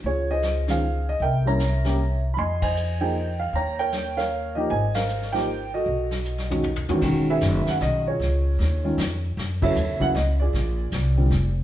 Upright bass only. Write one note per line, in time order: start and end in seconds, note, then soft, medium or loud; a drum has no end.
0.04 1.16 C#2 medium
1.20 2.33 C2 medium
2.37 3.50 F2 medium
3.53 4.66 D#2 medium
4.70 5.83 G#1 medium
5.86 6.85 B1 medium
6.88 muted upright bass stroke soft
7.02 7.41 E1 medium
7.42 7.65 F#1 medium
7.67 muted upright bass stroke soft
7.81 8.19 B1 medium
8.20 8.58 C#2 medium
8.59 8.97 D#2 medium
8.98 9.36 F2 loud
9.37 9.75 F#2 medium
9.75 10.13 D#2 medium
10.15 10.52 C#2 loud
10.53 10.91 A#1 medium
10.92 11.30 C2 medium
11.30 11.63 F1 medium